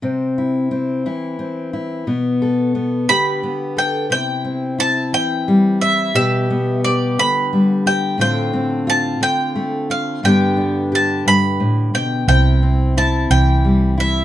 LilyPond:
<<
  \new Staff \with { instrumentName = "Mandolin" } { \time 6/8 \key c \major \tempo 4. = 59 r2. | r4. b''4 g''8 | g''4 a''8 g''4 e''8 | e''4 d''8 b''4 g''8 |
g''4 a''8 g''4 f''8 | g''4 a''8 b''4 g''8 | g''4 a''8 g''4 e''8 | }
  \new Staff \with { instrumentName = "Steel-string acoustic guitar" } { \time 6/8 \key c \major << { c'8 e'8 c'8 e'8 c'8 e'8 | b8 a'8 b8 g'8 b8 a'8 | e'8 c'8 e'4 g8 e'8 | g'8 b8 g'4 g8 g'8 |
<d a c' f'>8 c'8 f'4 a8 f'8 | <d b d' g'>8 d'8 g'2 | e'8 c'8 e'4 g8 e'8 | } \\ { c4. e4. | b,4. d4. | c4. e4. | b,4. d4. |
a,4. d4. | g,4. g,8 a,8 b,8 | c4. e4. | } >> }
  \new Staff \with { instrumentName = "Fingered electric bass" } { \clef bass \time 6/8 \key c \major r2. | r2. | r2. | r2. |
r2. | r2. | c,4. c,4. | }
>>